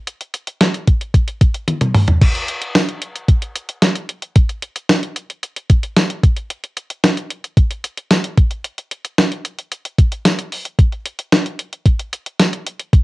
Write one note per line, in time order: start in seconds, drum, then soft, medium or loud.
0.07 closed hi-hat medium
0.21 closed hi-hat soft
0.34 closed hi-hat medium
0.47 closed hi-hat medium
0.61 snare loud
0.61 closed hi-hat medium
0.74 closed hi-hat soft
0.87 kick medium
0.87 closed hi-hat medium
1.01 closed hi-hat soft
1.14 kick medium
1.14 closed hi-hat medium
1.28 closed hi-hat medium
1.41 kick loud
1.41 closed hi-hat medium
1.54 closed hi-hat medium
1.68 closed hi-hat loud
1.68 high tom medium
1.81 closed hi-hat medium
1.81 mid tom medium
1.95 mid tom medium
1.95 open hi-hat medium
2.08 closed hi-hat soft
2.08 floor tom medium
2.21 kick loud
2.21 closed hi-hat medium
2.21 crash loud
2.35 closed hi-hat soft
2.48 closed hi-hat medium
2.62 closed hi-hat medium
2.75 snare loud
2.75 closed hi-hat medium
2.75 tambourine medium
2.89 closed hi-hat soft
3.02 closed hi-hat medium
3.16 closed hi-hat soft
3.28 kick loud
3.28 closed hi-hat medium
3.42 closed hi-hat medium
3.56 closed hi-hat medium
3.69 closed hi-hat medium
3.82 snare loud
3.82 closed hi-hat loud
3.82 tambourine medium
3.95 closed hi-hat medium
4.09 closed hi-hat medium
4.22 closed hi-hat soft
4.36 kick loud
4.36 closed hi-hat medium
4.49 closed hi-hat soft
4.62 closed hi-hat medium
4.76 closed hi-hat medium
4.89 snare loud
4.89 closed hi-hat medium
4.89 tambourine medium
5.03 closed hi-hat soft
5.16 closed hi-hat medium
5.30 closed hi-hat soft
5.43 closed hi-hat medium
5.57 closed hi-hat medium
5.70 kick loud
5.70 closed hi-hat medium
5.83 closed hi-hat medium
5.97 snare loud
5.97 closed hi-hat loud
5.97 tambourine medium
6.10 closed hi-hat medium
6.23 kick loud
6.23 closed hi-hat medium
6.37 closed hi-hat soft
6.50 closed hi-hat medium
6.64 closed hi-hat soft
6.77 closed hi-hat medium
6.90 closed hi-hat medium
7.04 snare loud
7.04 closed hi-hat medium
7.04 tambourine medium
7.17 closed hi-hat medium
7.30 closed hi-hat medium
7.44 closed hi-hat soft
7.57 kick loud
7.57 closed hi-hat medium
7.71 closed hi-hat medium
7.84 closed hi-hat medium
7.98 closed hi-hat medium
8.11 snare loud
8.11 closed hi-hat loud
8.11 tambourine medium
8.24 closed hi-hat medium
8.38 kick loud
8.38 closed hi-hat medium
8.51 closed hi-hat soft
8.64 closed hi-hat medium
8.78 closed hi-hat soft
8.91 closed hi-hat medium
9.05 closed hi-hat medium
9.18 snare loud
9.18 closed hi-hat medium
9.18 tambourine medium
9.32 closed hi-hat soft
9.45 closed hi-hat medium
9.59 closed hi-hat soft
9.72 closed hi-hat medium
9.85 closed hi-hat medium
9.98 kick loud
9.98 closed hi-hat medium
10.12 closed hi-hat medium
10.25 snare loud
10.25 closed hi-hat loud
10.25 tambourine medium
10.39 closed hi-hat medium
10.52 open hi-hat medium
10.65 closed hi-hat medium
10.79 kick loud
10.79 closed hi-hat medium
10.92 closed hi-hat soft
11.06 closed hi-hat medium
11.19 closed hi-hat medium
11.32 snare loud
11.32 closed hi-hat medium
11.32 tambourine medium
11.46 closed hi-hat soft
11.59 closed hi-hat medium
11.73 closed hi-hat soft
11.86 kick loud
11.86 closed hi-hat medium
11.99 closed hi-hat medium
12.13 closed hi-hat medium
12.26 closed hi-hat medium
12.39 snare loud
12.39 closed hi-hat loud
12.39 tambourine medium
12.53 closed hi-hat medium
12.66 closed hi-hat medium
12.79 closed hi-hat soft
12.93 kick loud
12.93 closed hi-hat medium